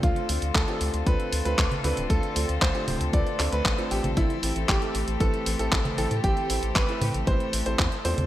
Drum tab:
HH |xxoxxxoxxxoxxxox|xxoxxxoxxxoxxxox|xxoxxxoxxxoxxxox|xxoxxxoxxxoxxxox|
CP |----x-------x---|----x-----x-x---|----x-------x---|----x-------x---|
CG |-------------o--|------o--------o|-------------o--|------o--------o|
BD |o---o---o---o---|o---o---o---o---|o---o---o---o---|o---o---o---o---|